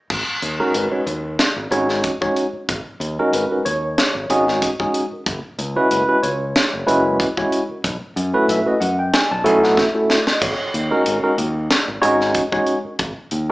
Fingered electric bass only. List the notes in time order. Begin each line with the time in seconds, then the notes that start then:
0.10 G#1
0.28 muted fingered electric bass stroke
0.42 D#2
0.60 muted fingered electric bass stroke
0.75 G#1
0.92 muted fingered electric bass stroke
1.06 D#2
1.56 G#1
1.71 G#1
2.53 muted fingered electric bass stroke
2.69 G#1
2.85 muted fingered electric bass stroke
3.00 D#2
3.18 muted fingered electric bass stroke
3.33 G#1
3.50 muted fingered electric bass stroke
3.66 D#2
4.15 G#1
4.29 G#1
5.12 muted fingered electric bass stroke
5.27 F#1
5.44 muted fingered electric bass stroke
5.59 C#2
5.77 muted fingered electric bass stroke
5.91 F#1
6.09 muted fingered electric bass stroke
6.23 C#2
6.73 F#1
6.87 F#1
7.70 muted fingered electric bass stroke
7.84 B1
8.01 muted fingered electric bass stroke
8.16 F#2
8.34 muted fingered electric bass stroke
8.48 B1
8.66 muted fingered electric bass stroke
8.81 F#2
9.31 B1
9.46 B1
10.27 muted fingered electric bass stroke
10.42 G#1
10.60 muted fingered electric bass stroke
10.74 D#2
10.92 muted fingered electric bass stroke
11.06 G#1
11.24 muted fingered electric bass stroke
11.38 D#2
11.88 G#1
12.02 G#1
12.85 muted fingered electric bass stroke
13.00 G#1
13.18 muted fingered electric bass stroke
13.32 D#2